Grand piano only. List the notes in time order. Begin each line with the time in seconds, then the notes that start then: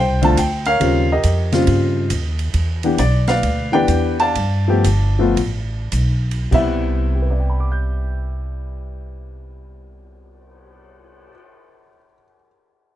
Already playing: C5 G5
0.22 D3 A3 C4 F4 A5
0.39 G5
0.66 A#4 C#5 F5
0.80 C#3 G3 C4 F4
1.12 G4 A#4 D#5
1.52 C#3 G3 C4 F4
2.84 E3 B3 D4 G4
2.99 D5
3.28 B4 D5 F5
3.72 E3 B3 D4 G4 B4 D5 G5
4.20 D5 F5 A5
4.68 F3 A3 B3 G4
5.19 F3 A3 B3 F4
6.51 C3 G3 B3 E4 E5
7.15 G4
7.22 B4
7.30 D5
7.40 G5
7.50 B5
7.60 D6
7.72 G6